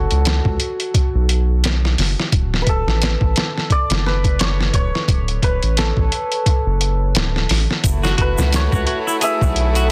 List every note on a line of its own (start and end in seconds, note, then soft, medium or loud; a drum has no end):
0.00 2.85 F#4 medium
0.00 1.84 A4 loud
0.00 0.25 B4 loud
0.00 0.76 C#5 loud
0.11 0.41 C#2 medium
0.11 closed hi-hat soft
0.25 snare loud
0.25 closed hi-hat medium
0.45 0.58 C#2 loud
0.45 kick medium
0.60 closed hi-hat medium
0.80 closed hi-hat soft
0.94 kick loud
0.94 closed hi-hat medium
1.15 1.95 B1 medium
1.29 closed hi-hat medium
1.64 snare loud
1.64 closed hi-hat medium
1.85 snare soft
1.98 2.15 F#1 loud
1.98 snare medium
1.98 open hi-hat medium
2.20 snare soft
2.32 2.63 D1 loud
2.32 kick loud
2.32 closed hi-hat medium
2.54 snare medium
2.62 4.06 B4 medium
2.67 2.84 D1 medium
2.67 5.62 A4 medium
2.67 kick medium
2.67 closed hi-hat medium
2.87 3.16 A1 medium
2.87 snare soft
3.02 snare loud
3.02 closed hi-hat medium
3.21 3.34 A1 loud
3.21 kick medium
3.36 snare loud
3.36 closed hi-hat medium
3.58 snare soft
3.70 4.46 D5 loud
3.70 kick medium
3.70 closed hi-hat medium
3.90 4.71 F#1 medium
3.90 snare loud
3.90 closed hi-hat medium
4.06 5.43 B4 medium
4.06 snare soft
4.24 kick medium
4.24 closed hi-hat medium
4.39 4.74 C#5 loud
4.39 snare loud
4.39 closed hi-hat medium
4.61 snare medium
4.74 4.91 D1 loud
4.74 7.30 C#5 loud
4.74 kick medium
4.74 closed hi-hat medium
4.95 snare soft
5.08 5.39 D1 loud
5.08 kick loud
5.08 closed hi-hat medium
5.28 closed hi-hat soft
5.42 5.60 D1 medium
5.42 8.17 B4 medium
5.42 kick medium
5.42 closed hi-hat medium
5.63 5.92 A1 medium
5.63 closed hi-hat soft
5.77 8.71 A4 medium
5.77 snare loud
5.77 closed hi-hat medium
5.97 6.10 A1 loud
5.97 kick medium
6.12 closed hi-hat medium
6.32 closed hi-hat soft
6.46 kick loud
6.46 closed hi-hat medium
6.66 7.14 F#1 medium
6.81 closed hi-hat medium
7.15 7.46 D1 loud
7.15 snare loud
7.15 closed hi-hat medium
7.36 snare soft
7.49 7.67 A1 medium
7.49 snare medium
7.49 open hi-hat medium
7.71 snare soft
7.83 8.15 F#1 loud
7.83 9.92 A3 medium
7.83 9.92 E4 medium
7.83 9.92 F#4 medium
7.83 kick loud
7.83 closed hi-hat medium
7.83 shaker medium
8.04 8.17 F#4 medium
8.04 snare medium
8.04 shaker soft
8.18 8.36 F#1 medium
8.18 8.70 F#4 medium
8.18 9.92 B4 medium
8.18 kick medium
8.18 closed hi-hat medium
8.38 8.68 C#2 medium
8.38 snare soft
8.38 low conga medium
8.38 shaker medium
8.53 9.92 C#5 loud
8.53 snare loud
8.53 closed hi-hat medium
8.53 shaker medium
8.72 8.85 C#2 loud
8.72 8.86 F#4 medium
8.72 kick loud
8.72 shaker soft
8.87 8.98 F#4 medium
8.87 closed hi-hat medium
9.07 9.15 E4 medium
9.07 shaker medium
9.21 9.74 G#4 medium
9.21 9.92 E5 loud
9.21 closed hi-hat medium
9.21 shaker medium
9.41 9.92 B1 medium
9.41 kick loud
9.41 shaker soft
9.56 closed hi-hat medium
9.75 9.90 F#4 loud
9.75 closed hi-hat soft
9.75 shaker medium